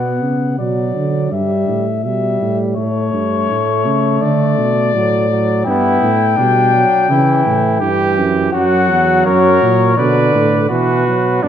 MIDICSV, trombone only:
0, 0, Header, 1, 2, 480
1, 0, Start_track
1, 0, Tempo, 727273
1, 1830, Time_signature, 4, 2, 24, 8
1, 3264, Tempo, 720288
1, 7621, End_track
2, 0, Start_track
2, 0, Title_t, "Trombone"
2, 0, Program_c, 0, 57
2, 0, Note_on_c, 0, 59, 67
2, 358, Note_off_c, 0, 59, 0
2, 388, Note_on_c, 0, 54, 67
2, 859, Note_off_c, 0, 54, 0
2, 870, Note_on_c, 0, 55, 73
2, 1242, Note_off_c, 0, 55, 0
2, 1355, Note_on_c, 0, 55, 63
2, 1821, Note_off_c, 0, 55, 0
2, 1831, Note_on_c, 0, 57, 85
2, 3264, Note_on_c, 0, 54, 72
2, 3274, Note_off_c, 0, 57, 0
2, 3498, Note_off_c, 0, 54, 0
2, 3502, Note_on_c, 0, 54, 69
2, 3736, Note_off_c, 0, 54, 0
2, 3745, Note_on_c, 0, 59, 90
2, 4050, Note_off_c, 0, 59, 0
2, 4230, Note_on_c, 0, 55, 68
2, 4448, Note_off_c, 0, 55, 0
2, 4465, Note_on_c, 0, 54, 72
2, 4697, Note_off_c, 0, 54, 0
2, 4704, Note_on_c, 0, 52, 90
2, 5170, Note_off_c, 0, 52, 0
2, 5185, Note_on_c, 0, 52, 82
2, 5662, Note_on_c, 0, 54, 103
2, 5672, Note_off_c, 0, 52, 0
2, 6621, Note_on_c, 0, 50, 89
2, 6631, Note_off_c, 0, 54, 0
2, 7098, Note_off_c, 0, 50, 0
2, 7102, Note_on_c, 0, 52, 80
2, 7338, Note_off_c, 0, 52, 0
2, 7352, Note_on_c, 0, 54, 71
2, 7584, Note_off_c, 0, 54, 0
2, 7591, Note_on_c, 0, 59, 94
2, 7621, Note_off_c, 0, 59, 0
2, 7621, End_track
0, 0, End_of_file